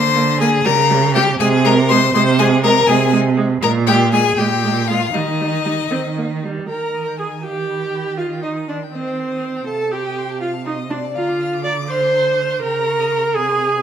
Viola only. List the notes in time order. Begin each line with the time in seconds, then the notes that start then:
0.16 A#3
0.40 A#3
0.65 G3
0.90 G3
1.16 G3
1.40 G#3
1.65 G#3
1.90 G#3
2.15 G#3
2.39 G#3
2.64 G#3
2.88 G#3
3.13 G#3
3.37 G#3
3.61 G#3
3.87 G#3
4.12 G#3
4.38 G#3
4.64 G#3
4.89 G#3
5.14 G3
5.40 G3
5.66 G3
5.91 C4
6.17 A#3
6.43 G3
6.69 A#4
7.19 G#4
7.44 G4
8.18 F4
8.44 D#4
8.68 D4
8.93 C4
9.67 A4
9.92 G4
10.41 F4
10.66 D#4
10.90 D4
11.15 F4
11.64 D5
11.89 C5
12.62 A#4
13.36 G#4